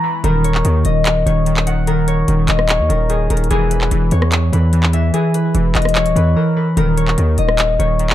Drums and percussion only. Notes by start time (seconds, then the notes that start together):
0.24 closed hi-hat
0.44 closed hi-hat
0.55 clap
0.65 closed hi-hat
0.85 closed hi-hat
1.05 clap, closed hi-hat
1.27 closed hi-hat
1.46 closed hi-hat
1.57 clap
1.67 closed hi-hat
1.87 closed hi-hat
2.08 closed hi-hat
2.28 closed hi-hat
2.48 clap, closed hi-hat
2.59 cross-stick
2.69 clap, closed hi-hat
2.90 closed hi-hat
3.10 closed hi-hat
3.30 closed hi-hat
3.37 closed hi-hat
3.44 closed hi-hat
3.51 closed hi-hat
3.71 closed hi-hat
3.81 clap
3.91 closed hi-hat
4.11 closed hi-hat
4.22 cross-stick
4.32 clap, closed hi-hat
4.53 closed hi-hat
4.73 closed hi-hat
4.83 clap
4.93 closed hi-hat
5.14 closed hi-hat
5.34 closed hi-hat
5.55 closed hi-hat
5.75 clap, closed hi-hat
5.82 cross-stick, closed hi-hat
5.89 closed hi-hat
5.95 clap, closed hi-hat
6.06 closed hi-hat
6.16 closed hi-hat
6.77 closed hi-hat
6.98 closed hi-hat
7.08 clap
7.18 closed hi-hat
7.38 closed hi-hat
7.49 cross-stick
7.58 clap, closed hi-hat
7.80 closed hi-hat
7.99 closed hi-hat
8.10 clap